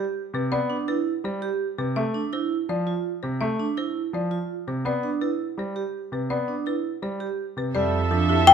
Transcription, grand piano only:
0.34 C3
0.52 B3
1.24 G3
1.78 C3
1.97 A3
2.69 F3
3.23 C3
3.41 A3
4.13 F3
4.67 C3
4.85 B3
5.58 G3
6.12 C3
6.30 B3
7.02 G3
7.57 C3
7.75 G3
8.11 F3
8.47 F3

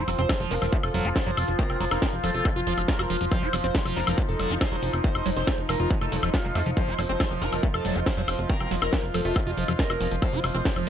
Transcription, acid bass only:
0.08 F#3
0.19 C4
0.29 F3
0.40 F3
0.51 F4
0.62 F3
0.73 A3
0.94 F#3
1.05 F4
1.16 F3
1.27 F#3
1.59 A3
1.80 F#3
2.02 C4
2.24 F3
2.34 F4
2.45 F3
2.56 F4
2.67 F3
2.78 F3
2.88 C4
2.99 F#4
3.10 F3
3.21 F3
3.32 F3
3.42 F4
3.53 F#3
3.64 C4
3.75 F3
3.86 F3
3.96 F4
4.07 F3
4.18 A3
4.39 F#3
4.50 F4
4.61 F3
4.72 F#3
5.04 A3
5.26 F#3
5.47 C4
5.69 F3
5.80 F4
5.91 F3
6.01 F4
6.12 F#3
6.23 F3
6.34 F3
6.45 F#3
6.55 A3
6.66 F3
6.77 F3
6.88 F4
6.99 F#3
7.09 C4
7.20 F3
7.31 F3
7.42 F4
7.52 F3
7.63 A3
7.85 F#3
7.96 F4
8.06 F3
8.17 F#3
8.50 A3
8.71 F#3
8.93 C4
9.14 F3
9.25 F4
9.36 F3
9.47 F4
9.57 F3
9.68 F3
9.79 C4
9.90 F#4
10.01 F3
10.11 F3
10.22 F3
10.33 F4
10.44 F#3
10.55 C4
10.65 F3
10.76 F3

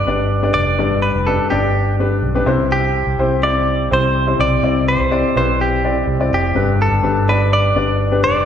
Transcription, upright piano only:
Already playing: G2 B3 D4 G4 B4
0.07 B3 D4 G4 D5
0.42 B3 D4 G4 D5
0.78 G2 B3 D4 G4 D5
1.27 B3 D4 G4 B4
1.50 B3 D4 G4 D5
2.00 B3 D4 G4 B4
2.34 B3 D4 G4 B4
2.46 C3 C4 E4 G4 C5
3.19 C4 E4 G4 C5
3.43 C4 E4 G4 C5
3.91 C4 E4 G4 C5
4.27 C4 E4 G4 C5
4.39 C3
4.63 C4 E4 G4 D5
5.11 C4 E4 G4 D5
5.36 C4 E4 G4 B4
5.83 C4 E4 G4 D5
6.20 C4 E4 G4 D5
6.55 G2 B3 D4 G4 B4
7.03 B3 D4 G4 B4
7.28 B3 D4 G4 D5
7.76 B3 D4 G4 D5
8.11 B3 D4 G4 B4

